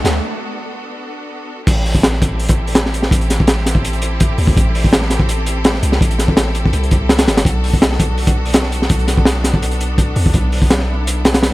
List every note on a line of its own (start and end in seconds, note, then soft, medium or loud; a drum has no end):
0.00 1.63 B3 medium
0.00 1.63 D4 medium
0.00 1.63 F#4 medium
0.00 1.63 A4 medium
0.00 riser medium
0.04 0.21 D2 loud
0.04 snare medium
0.04 closed hi-hat medium
1.67 3.10 A1 loud
1.67 7.41 C4 medium
1.67 7.41 E4 medium
1.67 7.41 G4 medium
1.67 11.53 A4 medium
1.67 kick loud
1.67 closed hi-hat medium
1.67 crash medium
1.86 open hi-hat medium
1.95 kick loud
2.03 snare loud
2.03 closed hi-hat medium
2.12 snare soft
2.22 kick loud
2.22 closed hi-hat medium
2.39 open hi-hat medium
2.48 kick loud
2.48 closed hi-hat medium
2.67 open hi-hat medium
2.75 snare loud
2.75 closed hi-hat medium
2.86 snare soft
2.94 closed hi-hat medium
3.03 snare soft
3.11 4.37 A1 loud
3.11 kick loud
3.11 closed hi-hat medium
3.21 closed hi-hat soft
3.30 snare soft
3.30 closed hi-hat medium
3.40 kick loud
3.47 snare loud
3.47 closed hi-hat medium
3.66 snare soft
3.66 closed hi-hat medium
3.75 kick medium
3.85 closed hi-hat medium
3.93 closed hi-hat soft
4.02 closed hi-hat medium
4.20 kick medium
4.20 closed hi-hat medium
4.38 4.55 D2 medium
4.38 open hi-hat medium
4.47 kick loud
4.57 5.82 A1 loud
4.57 kick loud
4.57 closed hi-hat medium
4.75 open hi-hat medium
4.84 kick medium
4.93 snare loud
4.93 closed hi-hat medium
5.02 snare soft
5.10 snare soft
5.10 closed hi-hat medium
5.20 kick medium
5.29 closed hi-hat loud
5.46 closed hi-hat medium
5.64 snare loud
5.64 closed hi-hat medium
5.74 snare soft
5.83 5.99 C2 loud
5.83 closed hi-hat medium
5.92 snare soft
6.01 6.73 A1 medium
6.01 kick loud
6.01 closed hi-hat medium
6.11 closed hi-hat soft
6.19 snare soft
6.19 closed hi-hat medium
6.28 kick loud
6.37 snare loud
6.37 closed hi-hat medium
6.55 closed hi-hat medium
6.66 kick loud
6.73 7.29 C2 medium
6.73 closed hi-hat medium
6.83 closed hi-hat soft
6.91 kick loud
6.91 closed hi-hat medium
7.09 snare medium
7.09 closed hi-hat medium
7.18 snare loud
7.18 closed hi-hat medium
7.27 7.44 G1 medium
7.27 snare loud
7.27 closed hi-hat medium
7.37 snare loud
7.37 closed hi-hat medium
7.45 8.89 B1 loud
7.45 11.53 B3 medium
7.45 11.53 D4 medium
7.45 10.32 F#4 medium
7.45 kick loud
7.45 closed hi-hat medium
7.64 open hi-hat medium
7.73 kick medium
7.82 snare loud
7.82 closed hi-hat medium
7.92 snare soft
7.99 kick loud
7.99 closed hi-hat medium
8.18 open hi-hat medium
8.27 kick loud
8.27 closed hi-hat medium
8.45 open hi-hat medium
8.54 snare loud
8.54 closed hi-hat medium
8.63 snare soft
8.72 closed hi-hat medium
8.82 snare soft
8.90 10.15 B1 loud
8.90 kick loud
8.90 closed hi-hat medium
8.99 closed hi-hat soft
9.08 snare soft
9.08 closed hi-hat medium
9.17 kick loud
9.25 snare loud
9.25 closed hi-hat medium
9.44 snare medium
9.44 closed hi-hat medium
9.54 kick medium
9.62 closed hi-hat medium
9.71 closed hi-hat soft
9.80 closed hi-hat medium
9.98 kick loud
9.98 closed hi-hat medium
10.16 10.33 E2 medium
10.16 open hi-hat medium
10.26 kick medium
10.33 11.53 B1 loud
10.33 11.53 E4 medium
10.33 kick loud
10.33 closed hi-hat medium
10.52 open hi-hat medium
10.62 kick medium
10.70 snare loud
10.70 closed hi-hat medium
10.78 snare soft
11.07 closed hi-hat medium
11.25 snare loud
11.25 closed hi-hat medium
11.34 snare loud
11.34 closed hi-hat medium
11.43 snare loud
11.43 closed hi-hat medium